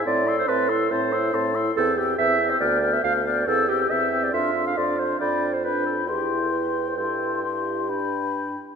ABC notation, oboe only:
X:1
M:4/4
L:1/8
Q:1/4=138
K:Am
V:1 name="Oboe"
a c' a c' a c' a c' | [K:C] g g g g g g g g | g g g g f f f f | g2 g2 g4 |
g2 g2 g3 z |]